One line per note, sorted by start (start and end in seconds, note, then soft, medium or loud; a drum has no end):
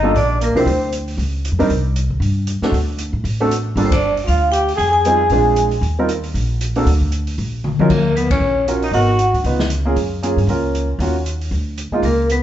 0.00 0.11 G1 medium
0.00 0.13 G3 medium
0.00 0.14 A#3 medium
0.00 0.13 D4 medium
0.00 0.12 D#4 medium
0.00 0.14 F4 medium
0.00 0.12 D#5 loud
0.04 0.14 A4 medium
0.14 0.52 A#1 medium
0.14 0.39 D4 medium
0.14 0.40 D5 medium
0.14 open hi-hat soft
0.41 0.55 A#3 medium
0.41 0.57 A#4 medium
0.41 closed hi-hat medium
0.55 0.65 C2 medium
0.55 0.65 F3 medium
0.55 0.65 C4 medium
0.55 0.90 C4 medium
0.55 0.65 D4 medium
0.55 0.66 E4 medium
0.55 0.66 G4 medium
0.55 0.90 C5 medium
0.55 open hi-hat soft
0.66 1.15 D2 medium
0.66 open hi-hat soft
0.92 closed hi-hat soft
1.08 open hi-hat soft
1.17 1.50 C#2 medium
1.17 open hi-hat soft
1.45 closed hi-hat medium
1.52 1.60 F2 medium
1.59 1.69 G2 medium
1.59 1.69 G3 medium
1.59 1.69 C4 medium
1.59 1.69 D4 medium
1.59 1.69 D#4 medium
1.59 1.69 A#4 medium
1.59 open hi-hat soft
1.70 2.19 C2 medium
1.70 open hi-hat soft
1.96 closed hi-hat medium
2.10 kick medium
2.20 2.58 G2 medium
2.20 open hi-hat soft
2.47 closed hi-hat medium
2.61 2.72 A3 medium
2.61 2.72 C4 medium
2.61 2.72 D4 medium
2.61 2.73 F#4 medium
2.61 2.73 A4 medium
2.61 muted upright bass stroke soft
2.61 snare soft
2.72 3.10 D2 medium
2.72 open hi-hat soft
2.98 closed hi-hat medium
3.13 3.23 A2 medium
3.24 3.73 A1 medium
3.24 open hi-hat soft
3.40 3.50 A3 medium
3.40 3.50 C4 medium
3.40 3.50 D4 medium
3.40 3.50 F#4 medium
3.40 3.50 A4 medium
3.51 closed hi-hat medium
3.76 4.25 G1 medium
3.76 3.90 G3 medium
3.76 3.90 A#3 medium
3.76 3.90 D4 medium
3.76 3.90 F4 medium
3.76 3.90 A4 medium
3.76 open hi-hat soft
3.84 3.91 C4 medium
3.84 3.92 C5 medium
3.91 4.15 D4 medium
3.91 4.16 D5 medium
3.91 kick medium
3.91 ride medium
4.17 open hi-hat soft
4.26 4.77 D2 medium
4.26 4.51 F4 medium
4.26 4.54 F5 medium
4.26 open hi-hat soft
4.51 4.75 G4 medium
4.51 4.79 G5 medium
4.51 closed hi-hat medium
4.68 open hi-hat soft
4.76 5.28 F2 medium
4.76 4.90 G#4 medium
4.76 4.92 G#5 loud
4.76 open hi-hat medium
4.90 5.66 G#4 medium
4.90 5.67 G#5 loud
5.05 5.19 G3 medium
5.05 5.19 C4 medium
5.05 5.19 D#4 medium
5.05 5.19 F4 medium
5.05 5.19 G#4 medium
5.05 closed hi-hat medium
5.30 5.80 A#1 medium
5.30 5.69 G#3 medium
5.30 5.69 C4 medium
5.30 5.69 D4 soft
5.30 5.69 F4 medium
5.30 5.69 G#4 medium
5.30 open hi-hat soft
5.56 closed hi-hat medium
5.71 open hi-hat soft
5.81 6.31 D#2 medium
5.81 open hi-hat soft
5.99 6.08 G3 medium
5.99 6.08 C4 medium
5.99 6.08 D#4 medium
5.99 6.08 F4 medium
5.99 6.08 A#4 medium
6.09 closed hi-hat medium
6.24 open hi-hat soft
6.34 6.83 A#1 medium
6.34 open hi-hat soft
6.61 closed hi-hat medium
6.75 6.85 A#3 medium
6.75 6.86 C4 medium
6.75 6.86 D4 medium
6.75 6.86 F#4 medium
6.75 6.86 A4 medium
6.75 open hi-hat soft
6.86 7.35 D2 medium
6.86 open hi-hat medium
7.01 kick soft
7.12 closed hi-hat medium
7.27 open hi-hat soft
7.38 7.76 A#1 medium
7.38 open hi-hat soft
7.64 mid tom medium
7.79 7.89 F#3 medium
7.79 7.89 C#4 medium
7.79 7.89 D#4 medium
7.79 7.90 F4 medium
7.79 7.90 A#4 medium
7.79 muted upright bass stroke soft
7.79 high tom medium
7.90 8.39 D#2 medium
7.90 8.14 A#3 medium
7.90 8.17 A#4 medium
7.90 kick medium
7.90 crash medium
8.16 8.30 B3 medium
8.16 8.30 B4 medium
8.16 closed hi-hat medium
8.30 8.65 C#4 medium
8.30 8.65 C#5 medium
8.30 kick medium
8.30 ride medium
8.39 8.89 A#1 medium
8.67 8.81 C#4 medium
8.67 8.81 F4 medium
8.67 8.81 F#4 medium
8.67 8.81 A#4 medium
8.67 closed hi-hat medium
8.82 8.93 D#4 medium
8.82 8.94 D#5 medium
8.82 open hi-hat soft
8.91 9.30 G#1 medium
8.91 9.06 B3 medium
8.91 9.07 D#4 medium
8.91 9.41 F#4 medium
8.91 9.07 F#4 medium
8.91 9.07 A#4 medium
8.91 9.42 F#5 medium
8.91 open hi-hat soft
9.19 closed hi-hat medium
9.34 9.43 D2 medium
9.34 open hi-hat soft
9.44 9.94 C#2 medium
9.44 9.58 B3 medium
9.44 9.59 D#4 medium
9.44 9.59 F4 medium
9.44 9.59 B4 medium
9.44 open hi-hat soft
9.59 snare medium
9.70 closed hi-hat medium
9.85 9.95 A#3 medium
9.85 9.96 C#4 medium
9.85 9.96 F4 medium
9.85 9.96 G#4 medium
9.96 10.34 F#2 medium
9.96 open hi-hat soft
10.22 10.36 A#3 medium
10.22 10.36 C#4 medium
10.22 10.36 F4 medium
10.22 10.36 G#4 medium
10.22 closed hi-hat medium
10.37 10.47 G2 medium
10.37 open hi-hat soft
10.47 10.97 C#2 medium
10.47 10.86 A#3 medium
10.47 10.87 C#4 medium
10.47 10.87 F4 medium
10.47 10.87 A#4 medium
10.47 open hi-hat soft
10.75 closed hi-hat medium
10.99 11.48 D#2 medium
10.99 11.13 A#3 medium
10.99 11.14 C#4 medium
10.99 11.14 F4 medium
10.99 11.14 F#4 medium
10.99 open hi-hat soft
11.26 closed hi-hat medium
11.41 open hi-hat soft
11.51 11.89 D2 medium
11.51 open hi-hat soft
11.78 closed hi-hat medium
11.91 12.02 G#3 medium
11.91 12.03 A#3 medium
11.91 12.03 D#4 medium
11.91 12.03 F4 medium
11.91 muted upright bass stroke soft
12.02 12.41 C#2 medium
12.02 12.27 A#3 medium
12.02 12.28 A#4 medium
12.02 open hi-hat soft
12.30 12.43 B3 medium
12.30 12.43 B4 medium
12.30 closed hi-hat medium